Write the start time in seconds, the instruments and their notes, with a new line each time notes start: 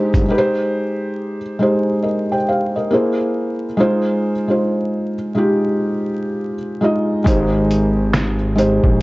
Already playing: felt piano G#3 D#4 G4 C5, string section G#3 C4 G4
0.14 analog synth bass G1, kick, closed hi-hat
0.28 felt piano G#3 D#4 G4 B4
0.38 felt piano C5
1.59 felt piano G#3 D#4 G4 C5
2.03 felt piano A#4 D#5
2.32 felt piano C5 G5
2.48 felt piano C5 F5
2.76 felt piano A#4 D#5
2.91 felt piano A#3 E4 G#4 C5
3.77 felt piano G#3 D#4 F4 C5
4.48 felt piano G#3 D#4 F4 C5
5.35 felt piano G#3 D#4 F4 G4
6.81 felt piano G#3 D#4 F4 D#5
7.24 analog synth bass G#1, felt piano G#3 D#4 G4 C5, kick, closed hi-hat
7.71 closed hi-hat
8.13 finger snap, snare, closed hi-hat
8.55 felt piano G#3 D#4 G4 C5, closed hi-hat
8.84 analog synth bass A#1, kick